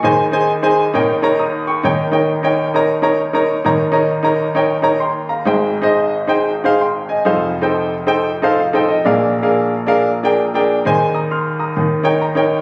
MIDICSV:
0, 0, Header, 1, 2, 480
1, 0, Start_track
1, 0, Key_signature, -4, "major"
1, 0, Tempo, 450789
1, 47, Time_signature, 4, 2, 24, 8
1, 13431, End_track
2, 0, Start_track
2, 0, Title_t, "Grand piano"
2, 0, Program_c, 0, 0
2, 0, Note_on_c, 0, 85, 70
2, 32, Note_on_c, 0, 63, 81
2, 39, Note_on_c, 0, 51, 70
2, 40, Note_on_c, 0, 68, 83
2, 44, Note_on_c, 0, 39, 76
2, 44, Note_on_c, 0, 72, 77
2, 50, Note_on_c, 0, 80, 91
2, 235, Note_off_c, 0, 63, 0
2, 240, Note_off_c, 0, 68, 0
2, 241, Note_off_c, 0, 72, 0
2, 245, Note_off_c, 0, 80, 0
2, 319, Note_off_c, 0, 85, 0
2, 339, Note_on_c, 0, 63, 78
2, 347, Note_on_c, 0, 68, 74
2, 351, Note_on_c, 0, 72, 77
2, 354, Note_on_c, 0, 80, 95
2, 520, Note_off_c, 0, 63, 0
2, 524, Note_off_c, 0, 68, 0
2, 526, Note_off_c, 0, 72, 0
2, 528, Note_off_c, 0, 80, 0
2, 665, Note_on_c, 0, 63, 76
2, 670, Note_on_c, 0, 68, 82
2, 670, Note_on_c, 0, 72, 74
2, 678, Note_on_c, 0, 80, 92
2, 908, Note_off_c, 0, 63, 0
2, 910, Note_off_c, 0, 68, 0
2, 910, Note_off_c, 0, 72, 0
2, 914, Note_off_c, 0, 80, 0
2, 961, Note_off_c, 0, 51, 0
2, 963, Note_off_c, 0, 39, 0
2, 998, Note_on_c, 0, 63, 88
2, 1003, Note_on_c, 0, 70, 77
2, 1006, Note_on_c, 0, 73, 76
2, 1007, Note_on_c, 0, 39, 75
2, 1007, Note_on_c, 0, 51, 72
2, 1013, Note_on_c, 0, 79, 89
2, 1198, Note_off_c, 0, 63, 0
2, 1201, Note_off_c, 0, 70, 0
2, 1203, Note_off_c, 0, 73, 0
2, 1206, Note_off_c, 0, 79, 0
2, 1301, Note_on_c, 0, 63, 80
2, 1307, Note_on_c, 0, 70, 78
2, 1309, Note_on_c, 0, 73, 83
2, 1318, Note_on_c, 0, 82, 95
2, 1475, Note_off_c, 0, 82, 0
2, 1481, Note_off_c, 0, 63, 0
2, 1484, Note_off_c, 0, 70, 0
2, 1485, Note_off_c, 0, 73, 0
2, 1485, Note_on_c, 0, 87, 63
2, 1491, Note_on_c, 0, 82, 53
2, 1771, Note_off_c, 0, 87, 0
2, 1774, Note_off_c, 0, 82, 0
2, 1783, Note_on_c, 0, 85, 69
2, 1785, Note_on_c, 0, 79, 59
2, 1925, Note_off_c, 0, 39, 0
2, 1925, Note_off_c, 0, 51, 0
2, 1953, Note_on_c, 0, 63, 82
2, 1955, Note_off_c, 0, 79, 0
2, 1960, Note_on_c, 0, 39, 67
2, 1961, Note_on_c, 0, 70, 72
2, 1962, Note_on_c, 0, 51, 72
2, 1964, Note_on_c, 0, 73, 74
2, 1971, Note_on_c, 0, 79, 83
2, 2156, Note_off_c, 0, 63, 0
2, 2160, Note_off_c, 0, 70, 0
2, 2162, Note_off_c, 0, 73, 0
2, 2165, Note_off_c, 0, 79, 0
2, 2241, Note_off_c, 0, 85, 0
2, 2254, Note_on_c, 0, 63, 78
2, 2259, Note_on_c, 0, 70, 69
2, 2264, Note_on_c, 0, 73, 68
2, 2268, Note_on_c, 0, 79, 84
2, 2438, Note_off_c, 0, 63, 0
2, 2440, Note_off_c, 0, 70, 0
2, 2443, Note_off_c, 0, 73, 0
2, 2445, Note_off_c, 0, 79, 0
2, 2587, Note_on_c, 0, 63, 74
2, 2590, Note_on_c, 0, 70, 72
2, 2599, Note_on_c, 0, 73, 72
2, 2604, Note_on_c, 0, 79, 90
2, 2829, Note_off_c, 0, 63, 0
2, 2830, Note_off_c, 0, 70, 0
2, 2835, Note_off_c, 0, 73, 0
2, 2837, Note_off_c, 0, 79, 0
2, 2919, Note_on_c, 0, 63, 75
2, 2925, Note_on_c, 0, 70, 79
2, 2933, Note_on_c, 0, 73, 67
2, 2936, Note_on_c, 0, 82, 87
2, 3119, Note_off_c, 0, 63, 0
2, 3122, Note_off_c, 0, 70, 0
2, 3126, Note_off_c, 0, 73, 0
2, 3128, Note_off_c, 0, 82, 0
2, 3216, Note_on_c, 0, 63, 76
2, 3222, Note_on_c, 0, 70, 78
2, 3225, Note_on_c, 0, 73, 75
2, 3231, Note_on_c, 0, 82, 91
2, 3399, Note_off_c, 0, 63, 0
2, 3402, Note_off_c, 0, 70, 0
2, 3404, Note_off_c, 0, 73, 0
2, 3406, Note_off_c, 0, 82, 0
2, 3549, Note_on_c, 0, 63, 76
2, 3550, Note_on_c, 0, 70, 76
2, 3561, Note_on_c, 0, 73, 74
2, 3564, Note_on_c, 0, 82, 81
2, 3790, Note_off_c, 0, 63, 0
2, 3790, Note_off_c, 0, 70, 0
2, 3796, Note_off_c, 0, 73, 0
2, 3798, Note_off_c, 0, 82, 0
2, 3841, Note_off_c, 0, 39, 0
2, 3843, Note_off_c, 0, 51, 0
2, 3882, Note_on_c, 0, 63, 80
2, 3886, Note_on_c, 0, 70, 66
2, 3889, Note_on_c, 0, 39, 68
2, 3892, Note_on_c, 0, 51, 67
2, 3892, Note_on_c, 0, 73, 75
2, 3898, Note_on_c, 0, 82, 86
2, 4081, Note_off_c, 0, 63, 0
2, 4083, Note_off_c, 0, 70, 0
2, 4086, Note_off_c, 0, 73, 0
2, 4089, Note_off_c, 0, 82, 0
2, 4172, Note_on_c, 0, 63, 84
2, 4180, Note_on_c, 0, 70, 72
2, 4182, Note_on_c, 0, 73, 69
2, 4190, Note_on_c, 0, 82, 82
2, 4357, Note_off_c, 0, 63, 0
2, 4361, Note_off_c, 0, 70, 0
2, 4362, Note_off_c, 0, 73, 0
2, 4366, Note_off_c, 0, 82, 0
2, 4501, Note_on_c, 0, 63, 81
2, 4509, Note_on_c, 0, 70, 72
2, 4514, Note_on_c, 0, 73, 70
2, 4520, Note_on_c, 0, 82, 87
2, 4746, Note_off_c, 0, 63, 0
2, 4750, Note_off_c, 0, 70, 0
2, 4752, Note_off_c, 0, 73, 0
2, 4755, Note_off_c, 0, 82, 0
2, 4843, Note_on_c, 0, 63, 81
2, 4848, Note_on_c, 0, 70, 75
2, 4855, Note_on_c, 0, 73, 77
2, 4862, Note_on_c, 0, 79, 82
2, 5041, Note_off_c, 0, 63, 0
2, 5044, Note_off_c, 0, 70, 0
2, 5047, Note_off_c, 0, 73, 0
2, 5051, Note_off_c, 0, 79, 0
2, 5135, Note_on_c, 0, 63, 78
2, 5142, Note_on_c, 0, 70, 76
2, 5145, Note_on_c, 0, 73, 72
2, 5152, Note_on_c, 0, 82, 90
2, 5318, Note_off_c, 0, 63, 0
2, 5322, Note_off_c, 0, 70, 0
2, 5323, Note_off_c, 0, 73, 0
2, 5326, Note_on_c, 0, 84, 63
2, 5327, Note_off_c, 0, 82, 0
2, 5331, Note_on_c, 0, 79, 51
2, 5611, Note_off_c, 0, 84, 0
2, 5613, Note_off_c, 0, 79, 0
2, 5636, Note_on_c, 0, 82, 67
2, 5643, Note_on_c, 0, 77, 51
2, 5766, Note_off_c, 0, 39, 0
2, 5767, Note_off_c, 0, 51, 0
2, 5808, Note_on_c, 0, 63, 77
2, 5814, Note_on_c, 0, 32, 64
2, 5814, Note_on_c, 0, 68, 72
2, 5816, Note_on_c, 0, 44, 66
2, 5819, Note_on_c, 0, 72, 69
2, 5825, Note_on_c, 0, 79, 85
2, 6087, Note_off_c, 0, 82, 0
2, 6091, Note_off_c, 0, 77, 0
2, 6101, Note_off_c, 0, 63, 0
2, 6104, Note_off_c, 0, 68, 0
2, 6106, Note_off_c, 0, 72, 0
2, 6110, Note_off_c, 0, 79, 0
2, 6194, Note_on_c, 0, 63, 83
2, 6201, Note_on_c, 0, 68, 72
2, 6207, Note_on_c, 0, 72, 69
2, 6211, Note_on_c, 0, 75, 89
2, 6527, Note_off_c, 0, 63, 0
2, 6531, Note_off_c, 0, 68, 0
2, 6534, Note_off_c, 0, 72, 0
2, 6536, Note_off_c, 0, 75, 0
2, 6681, Note_on_c, 0, 63, 82
2, 6684, Note_on_c, 0, 68, 71
2, 6692, Note_on_c, 0, 72, 75
2, 6699, Note_on_c, 0, 79, 88
2, 6913, Note_off_c, 0, 63, 0
2, 6914, Note_off_c, 0, 68, 0
2, 6918, Note_off_c, 0, 72, 0
2, 6922, Note_off_c, 0, 79, 0
2, 7070, Note_on_c, 0, 63, 77
2, 7074, Note_on_c, 0, 68, 79
2, 7078, Note_on_c, 0, 72, 74
2, 7089, Note_on_c, 0, 77, 95
2, 7245, Note_off_c, 0, 63, 0
2, 7247, Note_off_c, 0, 68, 0
2, 7249, Note_off_c, 0, 72, 0
2, 7254, Note_off_c, 0, 77, 0
2, 7255, Note_on_c, 0, 84, 59
2, 7260, Note_on_c, 0, 79, 57
2, 7535, Note_off_c, 0, 84, 0
2, 7538, Note_off_c, 0, 79, 0
2, 7549, Note_on_c, 0, 80, 61
2, 7557, Note_on_c, 0, 75, 52
2, 7687, Note_off_c, 0, 32, 0
2, 7688, Note_off_c, 0, 44, 0
2, 7721, Note_on_c, 0, 63, 81
2, 7726, Note_on_c, 0, 41, 70
2, 7728, Note_on_c, 0, 69, 70
2, 7730, Note_on_c, 0, 29, 67
2, 7730, Note_on_c, 0, 72, 70
2, 7736, Note_on_c, 0, 77, 85
2, 8003, Note_off_c, 0, 80, 0
2, 8007, Note_off_c, 0, 75, 0
2, 8017, Note_off_c, 0, 63, 0
2, 8020, Note_off_c, 0, 69, 0
2, 8021, Note_off_c, 0, 72, 0
2, 8024, Note_off_c, 0, 77, 0
2, 8108, Note_on_c, 0, 63, 79
2, 8113, Note_on_c, 0, 69, 67
2, 8119, Note_on_c, 0, 72, 71
2, 8126, Note_on_c, 0, 79, 82
2, 8444, Note_off_c, 0, 63, 0
2, 8446, Note_off_c, 0, 69, 0
2, 8449, Note_off_c, 0, 72, 0
2, 8452, Note_off_c, 0, 79, 0
2, 8590, Note_on_c, 0, 63, 82
2, 8593, Note_on_c, 0, 69, 67
2, 8596, Note_on_c, 0, 72, 72
2, 8605, Note_on_c, 0, 79, 96
2, 8826, Note_off_c, 0, 63, 0
2, 8828, Note_off_c, 0, 69, 0
2, 8830, Note_off_c, 0, 72, 0
2, 8834, Note_off_c, 0, 79, 0
2, 8968, Note_on_c, 0, 63, 80
2, 8977, Note_on_c, 0, 69, 70
2, 8978, Note_on_c, 0, 81, 64
2, 8981, Note_on_c, 0, 72, 71
2, 8988, Note_on_c, 0, 77, 88
2, 9144, Note_off_c, 0, 77, 0
2, 9149, Note_off_c, 0, 81, 0
2, 9154, Note_off_c, 0, 63, 0
2, 9158, Note_off_c, 0, 69, 0
2, 9160, Note_off_c, 0, 72, 0
2, 9160, Note_on_c, 0, 77, 65
2, 9299, Note_on_c, 0, 63, 84
2, 9302, Note_on_c, 0, 69, 74
2, 9314, Note_on_c, 0, 72, 66
2, 9318, Note_on_c, 0, 79, 78
2, 9441, Note_off_c, 0, 77, 0
2, 9461, Note_on_c, 0, 75, 66
2, 9543, Note_off_c, 0, 63, 0
2, 9545, Note_off_c, 0, 69, 0
2, 9551, Note_off_c, 0, 72, 0
2, 9553, Note_off_c, 0, 79, 0
2, 9602, Note_off_c, 0, 41, 0
2, 9604, Note_off_c, 0, 29, 0
2, 9630, Note_off_c, 0, 75, 0
2, 9633, Note_on_c, 0, 62, 83
2, 9640, Note_on_c, 0, 46, 72
2, 9641, Note_on_c, 0, 68, 69
2, 9642, Note_on_c, 0, 70, 70
2, 9643, Note_on_c, 0, 34, 69
2, 9652, Note_on_c, 0, 77, 87
2, 9932, Note_off_c, 0, 62, 0
2, 9936, Note_off_c, 0, 68, 0
2, 9937, Note_off_c, 0, 70, 0
2, 9942, Note_off_c, 0, 77, 0
2, 10025, Note_on_c, 0, 62, 76
2, 10035, Note_on_c, 0, 68, 70
2, 10038, Note_on_c, 0, 70, 73
2, 10043, Note_on_c, 0, 77, 81
2, 10362, Note_off_c, 0, 62, 0
2, 10367, Note_off_c, 0, 68, 0
2, 10368, Note_off_c, 0, 70, 0
2, 10371, Note_off_c, 0, 77, 0
2, 10505, Note_on_c, 0, 62, 82
2, 10511, Note_on_c, 0, 68, 73
2, 10517, Note_on_c, 0, 70, 79
2, 10523, Note_on_c, 0, 77, 91
2, 10744, Note_off_c, 0, 62, 0
2, 10747, Note_off_c, 0, 68, 0
2, 10750, Note_off_c, 0, 70, 0
2, 10753, Note_off_c, 0, 77, 0
2, 10894, Note_on_c, 0, 62, 79
2, 10899, Note_on_c, 0, 68, 77
2, 10905, Note_on_c, 0, 70, 74
2, 10913, Note_on_c, 0, 79, 92
2, 11076, Note_off_c, 0, 62, 0
2, 11079, Note_off_c, 0, 68, 0
2, 11082, Note_off_c, 0, 70, 0
2, 11086, Note_off_c, 0, 79, 0
2, 11224, Note_on_c, 0, 62, 84
2, 11229, Note_on_c, 0, 68, 74
2, 11234, Note_on_c, 0, 70, 72
2, 11238, Note_on_c, 0, 79, 87
2, 11466, Note_off_c, 0, 62, 0
2, 11468, Note_off_c, 0, 68, 0
2, 11471, Note_off_c, 0, 70, 0
2, 11473, Note_off_c, 0, 79, 0
2, 11520, Note_off_c, 0, 46, 0
2, 11521, Note_off_c, 0, 34, 0
2, 11555, Note_on_c, 0, 63, 81
2, 11561, Note_on_c, 0, 68, 74
2, 11564, Note_on_c, 0, 51, 66
2, 11565, Note_on_c, 0, 72, 68
2, 11566, Note_on_c, 0, 39, 72
2, 11573, Note_on_c, 0, 80, 87
2, 11853, Note_off_c, 0, 63, 0
2, 11856, Note_off_c, 0, 68, 0
2, 11858, Note_off_c, 0, 72, 0
2, 11863, Note_off_c, 0, 80, 0
2, 11867, Note_on_c, 0, 87, 65
2, 11875, Note_on_c, 0, 82, 55
2, 12038, Note_off_c, 0, 87, 0
2, 12042, Note_off_c, 0, 82, 0
2, 12045, Note_on_c, 0, 89, 58
2, 12049, Note_on_c, 0, 84, 52
2, 12330, Note_off_c, 0, 89, 0
2, 12331, Note_off_c, 0, 84, 0
2, 12346, Note_on_c, 0, 87, 56
2, 12353, Note_on_c, 0, 82, 50
2, 12483, Note_off_c, 0, 39, 0
2, 12483, Note_off_c, 0, 51, 0
2, 12526, Note_on_c, 0, 51, 64
2, 12527, Note_on_c, 0, 39, 65
2, 12802, Note_off_c, 0, 87, 0
2, 12805, Note_off_c, 0, 82, 0
2, 12815, Note_on_c, 0, 63, 77
2, 12818, Note_on_c, 0, 70, 73
2, 12825, Note_on_c, 0, 73, 76
2, 12829, Note_on_c, 0, 79, 91
2, 12997, Note_off_c, 0, 63, 0
2, 12999, Note_off_c, 0, 70, 0
2, 13002, Note_off_c, 0, 73, 0
2, 13004, Note_off_c, 0, 79, 0
2, 13007, Note_on_c, 0, 82, 63
2, 13152, Note_on_c, 0, 63, 77
2, 13164, Note_on_c, 0, 70, 72
2, 13165, Note_on_c, 0, 73, 76
2, 13172, Note_on_c, 0, 79, 86
2, 13391, Note_off_c, 0, 63, 0
2, 13397, Note_off_c, 0, 70, 0
2, 13397, Note_off_c, 0, 73, 0
2, 13401, Note_off_c, 0, 79, 0
2, 13431, Note_off_c, 0, 39, 0
2, 13431, Note_off_c, 0, 51, 0
2, 13431, Note_off_c, 0, 82, 0
2, 13431, End_track
0, 0, End_of_file